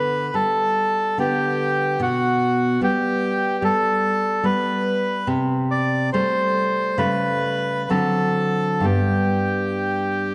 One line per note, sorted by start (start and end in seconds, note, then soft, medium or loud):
0.00 0.30 D3 soft
0.00 0.30 B3 soft
0.00 0.35 B4 soft
0.34 1.68 G3 soft
0.34 1.18 A4 medium
1.18 1.97 D3 soft
1.18 1.97 B3 soft
1.18 2.01 G4 medium
2.00 2.79 B2 soft
2.00 2.81 F#4 soft
2.81 3.58 G3 soft
2.81 3.58 B3 soft
2.81 3.63 G4 medium
3.62 4.42 G3 soft
3.62 4.46 A4 medium
4.43 5.24 G3 soft
4.43 5.24 B3 soft
4.43 5.28 B4 medium
5.27 6.10 C3 soft
5.71 6.10 D5 medium
6.13 6.95 G3 soft
6.13 6.95 A3 soft
6.13 6.98 C5 medium
6.98 7.87 C#3 soft
6.98 7.86 G3 soft
6.98 7.86 A3 soft
6.98 7.89 B4 medium
7.90 8.83 D3 soft
7.90 8.82 F#3 soft
7.90 8.82 C4 soft
7.90 8.86 A4 medium
8.80 10.35 G2 soft
8.80 10.35 G3 soft
8.80 10.35 B3 soft
8.85 10.35 G4 soft